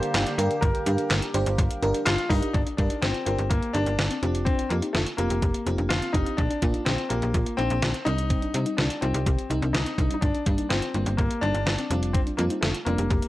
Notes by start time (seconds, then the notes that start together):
Already playing: D3 G3 A#3 G4 C5
0.03 closed hi-hat
0.14 G1, snare, clap, closed hi-hat
0.27 closed hi-hat
0.38 G2 D4 G4 A#4, closed hi-hat
0.51 closed hi-hat
0.61 G1 A#4, kick, closed hi-hat
0.75 closed hi-hat
0.86 G2 D4 G4 A#4, closed hi-hat
0.98 closed hi-hat
1.11 G1, snare, clap, closed hi-hat
1.22 closed hi-hat
1.34 G1 D4 G4 C5, closed hi-hat
1.46 G1, closed hi-hat
1.58 G1, kick, closed hi-hat
1.71 closed hi-hat
1.82 G1 D4 G4 A#4, closed hi-hat
1.94 closed hi-hat
2.05 G1 F4, snare, clap, closed hi-hat
2.18 closed hi-hat
2.29 G2 D4 D#4 G4 A#4, kick, open hi-hat
2.42 closed hi-hat
2.53 G1 D4, kick, closed hi-hat
2.66 D4, closed hi-hat
2.77 G2 D4 G4 A#4, kick, closed hi-hat
2.90 D#4, closed hi-hat
3.02 G1 C4 F4, snare, closed hi-hat
3.14 closed hi-hat
3.25 G1 C4 D4 F4 G4 A#4, closed hi-hat
3.38 G1 G4, closed hi-hat
3.49 G1 A#3 G4, kick, closed hi-hat
3.62 closed hi-hat
3.73 G1 D4 D#4 G4 A#4, closed hi-hat
3.86 G1 D4, closed hi-hat
3.99 G1, snare, closed hi-hat
4.10 C4, closed hi-hat
4.22 F1 C4 D4 F4 G4, closed hi-hat
4.35 closed hi-hat
4.45 C4 D4, kick, closed hi-hat
4.58 D4, closed hi-hat
4.69 F2 A#3 C4 F4 G4, closed hi-hat
4.82 D#4, closed hi-hat
4.93 F1 A3 F4, snare, closed hi-hat
5.06 closed hi-hat
5.17 F1 A#3 C4 F4 G4, closed hi-hat
5.30 F1 G4, closed hi-hat
5.42 F1 G4, kick, closed hi-hat
5.54 closed hi-hat
5.66 F1 C4 D#4 F4 G4, closed hi-hat
5.78 F1 D4, closed hi-hat
5.89 F1 F4, snare, closed hi-hat
6.02 C4, closed hi-hat
6.13 F1 C4 D4 D#4 F4 G4, kick, closed hi-hat
6.26 closed hi-hat
6.37 A#1 D4, kick, closed hi-hat
6.50 D4, closed hi-hat
6.62 A#2 A#3 D4 F4, kick, closed hi-hat
6.74 D#4, closed hi-hat
6.85 A#1 C4 F4, snare, closed hi-hat
6.98 closed hi-hat
7.09 A#1 A#3 D4 F4 G4, closed hi-hat
7.22 A#1 G4, closed hi-hat
7.34 A#1 F4, kick, closed hi-hat
7.46 closed hi-hat
7.57 A#1 A#3 C4 D4 D#4 F4, closed hi-hat
7.70 A#1 D4, closed hi-hat
7.82 A#1, snare, closed hi-hat
7.94 C4, closed hi-hat
8.05 C2 G3 C4 D4 D#4, closed hi-hat
8.18 closed hi-hat
8.30 C4, kick, closed hi-hat
8.42 D4, closed hi-hat
8.54 C3 G3 C4 D#4, closed hi-hat
8.66 D#4, closed hi-hat
8.77 C2 D4 F4, snare, closed hi-hat
8.90 closed hi-hat
9.01 C2 G3 C4 D#4 F4, closed hi-hat
9.14 C2 G4, closed hi-hat
9.26 C2 G4, kick, closed hi-hat
9.39 closed hi-hat
9.50 C2 G3 C4 D#4, closed hi-hat
9.62 C2 D4, closed hi-hat
9.73 C2 D#4, snare, closed hi-hat
9.86 C4, closed hi-hat
9.98 C2 G3 C4 D4 D#4, kick, closed hi-hat
10.11 D#4, closed hi-hat
10.21 G1 D4, kick, closed hi-hat
10.34 D4, closed hi-hat
10.46 G2 G3 A#3 D4, kick, closed hi-hat
10.58 D#4, closed hi-hat
10.69 G1 C4 F4, snare, closed hi-hat
10.82 closed hi-hat
10.94 G1 G3 A#3 D4 F4, closed hi-hat
11.06 G1 G4, closed hi-hat
11.17 G1 A#3 G4, kick, closed hi-hat
11.31 closed hi-hat
11.41 G1 G3 A#3 D4 D#4, closed hi-hat
11.54 G1 D4, closed hi-hat
11.66 G1, snare, closed hi-hat
11.78 C4, closed hi-hat
11.90 F1 G3 C4 D4 F4, closed hi-hat
12.03 closed hi-hat
12.13 C4 D4, kick, closed hi-hat
12.27 D4, closed hi-hat
12.37 F2 G3 A#3 C4 F4, closed hi-hat
12.50 D#4, closed hi-hat
12.61 F1 A3 F4, snare, closed hi-hat
12.74 closed hi-hat
12.85 F1 G3 A#3 C4 D4 F4, closed hi-hat
12.98 F1 G4, closed hi-hat
13.10 F1 G4, kick, closed hi-hat
13.22 closed hi-hat